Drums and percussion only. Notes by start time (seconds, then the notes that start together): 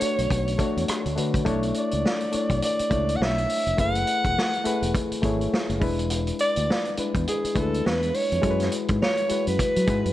0.01 closed hi-hat
0.18 closed hi-hat
0.30 kick, closed hi-hat
0.48 closed hi-hat
0.59 kick, closed hi-hat
0.77 closed hi-hat
0.88 cross-stick, closed hi-hat
1.06 closed hi-hat
1.17 closed hi-hat
1.34 kick, closed hi-hat
1.46 kick, closed hi-hat
1.63 closed hi-hat
1.74 closed hi-hat
1.91 closed hi-hat
2.06 snare
2.20 closed hi-hat
2.32 closed hi-hat
2.50 kick, closed hi-hat
2.62 closed hi-hat
2.79 closed hi-hat
2.91 kick, closed hi-hat
3.09 closed hi-hat
3.22 snare
3.38 closed hi-hat
3.49 open hi-hat
3.67 closed hi-hat
3.78 kick, closed hi-hat
3.95 closed hi-hat
4.07 closed hi-hat
4.25 kick, closed hi-hat
4.38 snare
4.53 closed hi-hat
4.65 closed hi-hat
4.82 closed hi-hat
4.95 kick, closed hi-hat
5.12 closed hi-hat
5.23 kick, closed hi-hat
5.41 closed hi-hat
5.54 snare
5.70 closed hi-hat
5.81 kick, open hi-hat
5.99 closed hi-hat
6.10 closed hi-hat
6.27 closed hi-hat
6.39 closed hi-hat
6.56 closed hi-hat
6.70 snare
6.85 closed hi-hat
6.97 closed hi-hat
7.15 kick, closed hi-hat
7.27 closed hi-hat
7.45 closed hi-hat
7.56 kick, closed hi-hat
7.74 closed hi-hat
7.86 snare
8.03 closed hi-hat
8.14 open hi-hat
8.32 closed hi-hat
8.43 kick, closed hi-hat
8.60 snare, closed hi-hat
8.72 closed hi-hat
8.88 kick, closed hi-hat
9.02 snare
9.17 closed hi-hat
9.29 closed hi-hat
9.47 closed hi-hat
9.59 kick, closed hi-hat
9.76 closed hi-hat
9.87 kick, closed hi-hat
10.05 closed hi-hat